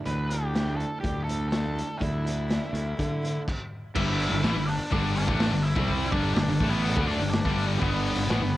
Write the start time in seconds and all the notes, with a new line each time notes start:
0.06 D2 D3 A3 D4 E4 B4, closed hi-hat
0.30 A3 D4 E4 G4, closed hi-hat
0.54 D3 A3 D4 E4, snare, closed hi-hat
0.76 D4 E4 A4, closed hi-hat
0.81 A3
1.00 D2 D3 A3 G4, kick, closed hi-hat
1.05 D4 E4
1.24 E4 A4
1.28 D3 A3 D4, closed hi-hat
1.49 D3 A3 A4, snare, closed hi-hat
1.53 D4 E4
1.75 A3 D4 E4, closed hi-hat
1.98 D2 D3 A3 E4, kick, closed hi-hat
2.02 D4 E4
2.24 A3 D4 E4, closed hi-hat
2.48 D3 A3 D4 E4, snare, closed hi-hat
2.73 D2 A3 D4 E4, closed hi-hat
2.97 D3 A3 D4 E4, kick, closed hi-hat
3.22 D3 A3 D4 E4, closed hi-hat
3.48 kick, crash
3.95 G1 G2 D3 G3 E4 E5, kick, crash
4.19 open hi-hat
4.31 G1 G2 D3
4.43 A1 A2 E3, snare, open hi-hat
4.55 G1 G2 D3
4.67 D4 D5, open hi-hat
4.91 G1 G2 D3 G3 D4 D5, kick, open hi-hat
5.16 D4 D5, open hi-hat
5.28 A1 A2 E3 A3, kick
5.40 snare, open hi-hat
5.52 G1 G2 D3
5.63 E4 E5, open hi-hat
5.76 C2 C3 G3 C4, kick
5.88 kick, open hi-hat
6.12 G1 G2 D3 G3 D4 D5, kick, open hi-hat
6.34 G1 G2 D3 D4 D5, snare, open hi-hat
6.48 G1 G2 D3
6.60 A1 A2 E3 A3, kick, open hi-hat
6.70 B3 B4
6.85 open hi-hat
6.97 D2 D3 A3 D4, kick
7.07 D4 D5, open hi-hat
7.20 G1 G2 D3
7.30 D5, snare, open hi-hat
7.34 D4
7.44 G1 G2 D3 G3, kick
7.58 open hi-hat
7.79 G1 G2 D3 G3 B3 B4, kick, open hi-hat
8.06 open hi-hat
8.16 G1 G2 D3
8.28 A1 A2 E3, snare, open hi-hat
8.40 G1 G2 D3